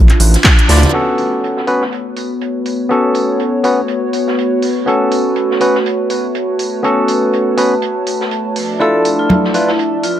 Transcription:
0.00 0.12 A1 medium
0.00 0.94 F3 medium
0.00 0.94 D4 medium
0.00 0.94 F4 medium
0.00 0.94 A5 medium
0.09 clap soft
0.09 closed hi-hat soft
0.20 0.37 A1 loud
0.20 closed hi-hat medium
0.20 open hi-hat loud
0.34 snare soft
0.34 closed hi-hat medium
0.44 kick loud
0.44 snare loud
0.44 clap loud
0.44 closed hi-hat medium
0.59 closed hi-hat medium
0.69 0.86 D2 medium
0.69 0.91 D4 medium
0.69 0.91 E4 medium
0.69 0.91 F4 medium
0.69 0.92 D5 medium
0.69 snare medium
0.69 closed hi-hat medium
0.69 open hi-hat loud
0.76 snare medium
0.76 closed hi-hat medium
0.83 snare medium
0.83 closed hi-hat medium
0.83 low conga medium
0.88 snare medium
0.88 closed hi-hat medium
0.93 10.20 A3 medium
0.93 1.64 B3 medium
0.93 9.90 B3 medium
0.93 1.65 C#4 medium
0.93 8.52 F#4 medium
0.93 1.65 F#4 medium
0.93 1.66 A4 loud
0.93 8.52 B4 medium
0.93 8.52 C#5 medium
0.93 closed hi-hat medium
1.18 closed hi-hat medium
1.18 open hi-hat loud
1.36 8.56 F#4 medium
1.44 closed hi-hat medium
1.57 snare soft
1.67 1.83 B3 medium
1.67 1.83 C#4 medium
1.67 1.83 F#4 medium
1.67 1.84 B4 medium
1.67 closed hi-hat medium
1.67 open hi-hat loud
1.81 snare soft
1.92 closed hi-hat medium
2.17 closed hi-hat medium
2.17 open hi-hat loud
2.24 5.56 C#5 medium
2.41 closed hi-hat medium
2.65 10.20 A5 medium
2.65 closed hi-hat medium
2.65 open hi-hat loud
2.89 3.61 B3 medium
2.89 3.62 C#4 medium
2.89 3.62 F#4 medium
2.89 3.62 A4 medium
2.89 closed hi-hat medium
3.14 closed hi-hat medium
3.14 open hi-hat loud
3.40 closed hi-hat medium
3.64 3.80 B3 medium
3.64 3.80 C#4 medium
3.64 3.80 F#4 medium
3.64 3.80 B4 medium
3.64 closed hi-hat medium
3.64 open hi-hat loud
3.88 closed hi-hat medium
4.13 closed hi-hat medium
4.13 open hi-hat loud
4.28 snare soft
4.38 closed hi-hat medium
4.62 open hi-hat loud
4.62 open hi-hat medium
4.86 5.58 B3 medium
4.86 5.58 C#4 medium
4.86 5.59 F#4 medium
4.86 5.59 A4 medium
4.86 closed hi-hat medium
5.12 closed hi-hat medium
5.12 open hi-hat loud
5.36 closed hi-hat medium
5.40 10.20 B4 loud
5.51 snare soft
5.60 5.76 B3 medium
5.60 5.77 C#4 medium
5.60 5.77 F#4 medium
5.60 5.77 B4 medium
5.60 closed hi-hat medium
5.60 open hi-hat loud
5.75 snare soft
5.86 closed hi-hat medium
6.10 closed hi-hat medium
6.10 open hi-hat loud
6.35 closed hi-hat medium
6.59 closed hi-hat medium
6.59 open hi-hat loud
6.83 7.55 B3 medium
6.83 7.55 C#4 medium
6.83 7.55 F#4 medium
6.83 7.56 A4 loud
6.83 closed hi-hat medium
7.08 closed hi-hat medium
7.08 open hi-hat loud
7.33 closed hi-hat medium
7.57 7.73 B3 medium
7.57 7.73 C#4 medium
7.57 7.74 F#4 medium
7.57 7.74 B4 medium
7.57 closed hi-hat medium
7.57 open hi-hat loud
7.82 closed hi-hat medium
8.07 closed hi-hat medium
8.07 open hi-hat loud
8.21 snare soft
8.31 closed hi-hat medium
8.56 10.20 F3 medium
8.56 10.20 D4 medium
8.56 10.20 D5 medium
8.56 10.20 E5 medium
8.56 open hi-hat medium
8.56 open hi-hat loud
8.79 9.51 D4 medium
8.79 9.52 E4 medium
8.79 9.52 F4 medium
8.79 9.06 A4 medium
8.79 9.52 A4 loud
8.79 closed hi-hat medium
8.85 10.20 F3 medium
8.85 10.20 E5 medium
9.05 closed hi-hat medium
9.05 open hi-hat loud
9.19 9.35 F4 medium
9.29 closed hi-hat medium
9.29 high conga loud
9.44 snare soft
9.54 9.70 D4 medium
9.54 9.70 E4 medium
9.54 9.70 F4 medium
9.54 9.70 B4 medium
9.54 closed hi-hat medium
9.54 open hi-hat loud
9.68 9.93 E4 medium
9.68 snare medium
9.79 closed hi-hat medium
10.04 10.20 F4 medium
10.04 closed hi-hat medium
10.04 open hi-hat loud

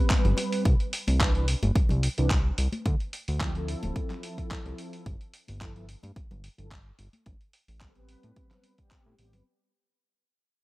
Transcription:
0.00 0.63 G3 medium
0.00 0.64 B3 medium
0.00 0.64 C4 medium
0.00 0.64 B4 loud
0.10 kick loud
0.10 clap loud
0.10 closed hi-hat medium
0.25 0.34 G1 loud
0.25 closed hi-hat soft
0.25 low conga medium
0.37 open hi-hat loud
0.37 high bongo medium
0.52 open hi-hat medium
0.65 0.75 C2 medium
0.65 kick loud
0.65 closed hi-hat medium
0.80 closed hi-hat soft
0.93 open hi-hat medium
1.07 1.55 C2 medium
1.07 open hi-hat medium
1.07 high conga medium
1.20 1.31 E3 medium
1.20 1.32 C4 medium
1.20 1.32 D4 medium
1.20 1.32 B4 medium
1.20 kick loud
1.20 clap loud
1.20 closed hi-hat medium
1.35 1.45 E3 medium
1.35 1.45 C4 medium
1.35 1.45 D4 medium
1.35 1.45 B4 medium
1.35 closed hi-hat soft
1.48 open hi-hat medium
1.63 1.72 G1 loud
1.63 closed hi-hat soft
1.63 high conga medium
1.76 1.87 C2 soft
1.76 kick loud
1.76 closed hi-hat medium
1.89 2.08 C2 medium
1.89 closed hi-hat soft
1.89 low conga medium
2.03 open hi-hat loud
2.17 2.52 C2 medium
2.17 2.27 E3 medium
2.17 2.27 C4 medium
2.17 2.27 D4 medium
2.17 2.28 B4 medium
2.17 closed hi-hat soft
2.30 kick loud
2.30 clap loud
2.30 closed hi-hat medium
2.58 2.68 C2 medium
2.58 open hi-hat loud
2.72 closed hi-hat soft
2.72 high conga medium
2.86 2.96 D2 loud
2.86 kick loud
2.86 closed hi-hat medium
3.00 closed hi-hat soft
3.13 open hi-hat medium
3.28 3.76 D2 medium
3.28 open hi-hat medium
3.40 3.52 F3 medium
3.40 3.52 C4 medium
3.40 3.52 E4 medium
3.40 3.52 G4 medium
3.40 kick loud
3.40 clap loud
3.40 closed hi-hat medium
3.54 5.04 F3 medium
3.54 5.04 C4 medium
3.54 5.04 E4 medium
3.54 5.05 A4 loud
3.54 closed hi-hat soft
3.68 open hi-hat medium
3.83 3.92 D1 loud
3.83 closed hi-hat soft
3.83 high conga medium
3.96 kick loud
3.96 closed hi-hat medium
4.10 clap soft
4.10 closed hi-hat soft
4.10 low conga medium
4.23 open hi-hat medium
4.38 kick medium
4.38 closed hi-hat soft
4.51 kick loud
4.51 clap loud
4.51 closed hi-hat medium
4.66 4.74 C2 loud
4.66 closed hi-hat soft
4.78 open hi-hat medium
4.93 open hi-hat medium
5.06 5.16 G1 medium
5.06 kick loud
5.06 closed hi-hat medium
5.21 closed hi-hat soft
5.34 open hi-hat medium
5.48 5.96 G1 medium
5.48 open hi-hat medium
5.48 high conga soft
5.60 5.72 F3 medium
5.60 5.72 B3 medium
5.60 5.72 E4 medium
5.60 5.72 A4 medium
5.60 kick loud
5.60 clap loud
5.60 closed hi-hat medium
5.75 5.85 F3 medium
5.75 5.85 B3 medium
5.75 5.85 E4 medium
5.75 5.85 A4 medium
5.75 closed hi-hat soft
5.89 open hi-hat medium
6.03 6.12 G2 loud
6.03 closed hi-hat medium
6.03 high conga medium
6.16 6.28 G1 soft
6.16 kick loud
6.16 closed hi-hat medium
6.31 6.49 G1 medium
6.31 closed hi-hat soft
6.31 low conga medium
6.44 open hi-hat medium
6.58 6.92 G1 medium
6.58 6.68 F3 medium
6.58 6.68 B3 medium
6.58 6.68 E4 medium
6.58 6.68 A4 medium
6.58 closed hi-hat soft
6.71 kick loud
6.71 clap loud
6.71 closed hi-hat medium
6.99 7.09 G1 medium
6.99 open hi-hat medium
7.13 closed hi-hat soft
7.13 high conga medium
7.26 7.36 A1 medium
7.26 kick loud
7.26 closed hi-hat medium
7.41 closed hi-hat soft
7.53 open hi-hat medium
7.68 8.16 A1 medium
7.68 open hi-hat medium
7.81 7.92 G3 medium
7.81 7.92 B3 medium
7.81 7.93 C4 medium
7.81 7.93 A4 medium
7.81 kick loud
7.81 clap loud
7.81 closed hi-hat medium
7.95 8.75 G3 medium
7.95 8.75 B3 medium
7.95 8.76 C4 medium
7.95 8.76 B4 loud
7.95 closed hi-hat soft
8.09 open hi-hat medium
8.23 8.32 A2 loud
8.23 closed hi-hat soft
8.23 high conga medium
8.36 kick loud
8.36 closed hi-hat medium
8.51 clap soft
8.51 closed hi-hat soft
8.51 low conga medium
8.64 open hi-hat medium
8.78 9.15 G3 medium
8.78 9.15 B3 medium
8.78 9.16 C4 medium
8.78 9.16 G4 loud
8.78 kick medium
8.78 closed hi-hat soft
8.91 kick loud
8.91 clap loud
8.91 closed hi-hat medium
9.06 9.15 A2 loud
9.18 9.35 A1 medium
9.18 9.31 G3 medium
9.18 9.31 B3 medium
9.18 9.31 C4 medium
9.18 9.31 G4 medium
9.18 open hi-hat medium
9.32 9.42 G1 medium
9.32 9.43 G3 medium
9.32 9.43 B3 medium
9.32 9.43 C4 medium
9.32 9.43 B4 medium
9.32 open hi-hat medium
9.32 low conga medium

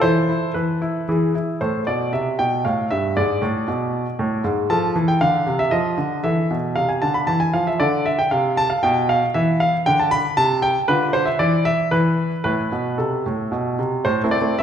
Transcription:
0.01 0.28 E3 medium
0.01 0.27 E4 soft
0.01 1.04 A4 soft
0.01 0.51 C5 medium
0.29 0.55 E4 soft
0.54 0.81 E3 soft
0.54 1.34 B4 medium
0.82 1.07 E4 soft
1.09 1.34 E3 medium
1.09 1.34 E4 soft
1.09 1.57 G#4 soft
1.35 1.60 E4 soft
1.61 1.86 A2 soft
1.61 3.13 A4 soft
1.61 1.84 C5 medium
1.87 2.12 B2 soft
1.87 2.10 D5 medium
2.13 2.38 C3 soft
2.13 2.36 E5 medium
2.39 2.64 B2 medium
2.39 2.62 G5 medium
2.65 2.89 A2 medium
2.65 2.88 F5 medium
2.91 3.15 G2 soft
2.91 3.16 E5 medium
3.17 3.41 G#2 medium
3.17 4.66 G#4 soft
3.17 4.41 D5 medium
3.42 3.66 A2 medium
3.68 4.05 B2 medium
4.19 4.43 A2 medium
4.44 4.69 G#2 medium
4.70 4.94 F3 medium
4.70 5.69 A4 soft
4.70 4.93 A5 medium
4.96 5.20 E3 medium
5.08 5.21 G5 medium
5.21 5.45 D3 medium
5.21 5.59 F5 medium
5.47 5.71 C3 soft
5.59 5.72 E5 medium
5.71 5.97 F3 medium
5.71 6.20 D#5 medium
5.98 6.23 D3 soft
6.24 6.49 E3 soft
6.24 7.24 A4 soft
6.24 6.55 E5 medium
6.51 6.75 B2 soft
6.76 7.01 C3 soft
6.76 6.89 F5 medium
6.89 7.02 G#5 medium
7.02 7.27 D3 soft
7.02 7.15 A5 medium
7.14 7.28 B5 medium
7.27 7.53 E3 soft
7.27 7.41 A5 medium
7.40 7.54 G#5 medium
7.53 7.79 F3 soft
7.53 7.67 F5 medium
7.67 7.80 E5 medium
7.80 8.18 D3 medium
7.80 8.80 A4 soft
7.80 8.06 D5 medium
8.06 8.19 E5 medium
8.19 8.32 G5 medium
8.31 8.69 C3 medium
8.31 8.55 F5 medium
8.57 8.71 A5 medium
8.70 8.83 F5 medium
8.83 9.21 B2 medium
8.83 9.07 G5 medium
9.09 9.25 F5 medium
9.34 9.72 E3 medium
9.34 10.34 B4 soft
9.34 9.61 E5 medium
9.60 9.76 F5 medium
9.86 10.24 D3 medium
9.86 9.99 G5 medium
10.00 10.12 A5 medium
10.11 10.35 B5 medium
10.37 10.75 C3 medium
10.37 10.63 A5 medium
10.62 10.78 G5 medium
10.88 11.26 D3 medium
10.88 11.36 F4 soft
10.88 11.12 B4 medium
11.13 11.27 C5 medium
11.26 11.39 E5 medium
11.39 11.77 E3 medium
11.39 11.66 D5 medium
11.65 11.92 E5 medium
11.91 12.30 E3 medium
11.91 12.42 B4 medium
12.44 12.71 A2 medium
12.44 14.02 E4 soft
12.44 12.95 B4 medium
12.72 12.98 B2 soft
12.98 13.25 C3 soft
12.98 13.79 A4 soft
13.26 13.52 A2 soft
13.52 13.78 B2 medium
13.79 14.04 C3 soft
14.05 14.23 A2 medium
14.05 14.21 C5 medium
14.24 14.36 A3 soft
14.24 14.36 C4 soft
14.24 14.37 E4 soft
14.31 14.58 D5 medium
14.41 14.54 A3 soft
14.41 14.54 C4 soft
14.41 14.54 E4 soft
14.59 14.63 A3 soft
14.59 14.63 E5 medium

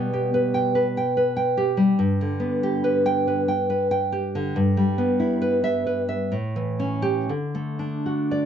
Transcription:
0.00 1.95 B2 medium
0.00 0.94 G3 soft
0.00 0.34 B3 soft
0.14 1.37 G4 soft
0.34 0.74 B4 soft
0.54 0.86 G5 medium
0.75 1.16 B4 soft
0.97 1.35 G5 soft
1.17 2.00 B4 soft
1.37 1.99 G5 soft
1.57 1.99 G4 soft
1.77 1.99 G3 soft
1.99 4.52 G2 medium
2.21 3.49 D3 soft
2.40 3.69 B3 soft
2.63 3.05 G4 soft
2.84 3.26 B4 medium
3.06 3.40 G5 medium
3.27 3.68 B4 soft
3.48 3.90 G5 soft
3.70 4.56 B4 soft
3.91 4.56 G5 soft
4.12 4.56 G4 soft
4.35 4.57 D3 soft
4.56 6.29 G2 medium
4.77 6.10 G3 soft
4.98 6.33 B3 soft
5.20 5.63 E4 soft
5.42 5.85 B4 soft
5.64 6.01 E5 medium
5.86 6.33 B4 soft
6.09 6.33 E5 soft
6.32 7.27 A2 soft
6.56 7.29 E3 soft
6.80 7.30 C#4 soft
7.02 7.29 G4 medium
7.29 8.46 D3 soft
7.55 8.46 A3 soft
7.79 8.46 D4 soft
8.06 8.46 F#4 soft
8.31 8.46 D5 soft

